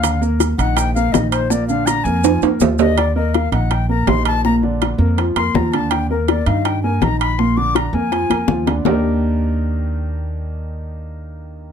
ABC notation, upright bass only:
X:1
M:4/4
L:1/8
Q:1/4=163
K:Eb
V:1 name="Upright bass" clef=bass
E,,3 B,,,3 B,,,2- | B,,,3 F,,2 F,, E,,2- | E,,3 B,,,3 B,,,2- | B,,,3 F,,2 F,, E,,2- |
E,,3 G,,3 B,,,2- | B,,,3 F,,2 F,, E,,2 | E,,8- | E,,8 |]